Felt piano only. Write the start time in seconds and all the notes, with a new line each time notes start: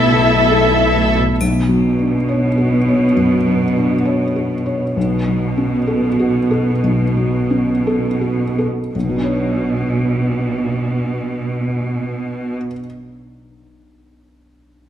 Already playing: B1 B2 A3 E4 A4
0.08 B2
0.30 E4
0.51 A4
0.74 E4
0.96 A3
1.20 B2
1.41 B1
1.69 F#3
1.99 D4
2.29 C#5
2.58 F#4
2.88 C#5
3.17 F#2
3.47 F#3
3.76 D4
4.05 C#5
4.36 F#4
4.66 C#5
4.97 B1
5.28 F#3
5.57 C#4
5.87 A4
6.19 F#4
6.51 A4
6.84 B1
7.17 F#3
7.50 C#4
7.87 A4
8.21 F#4
8.58 A4
8.96 B1
9.03 B2
9.09 F#3
9.16 D4
9.24 C#5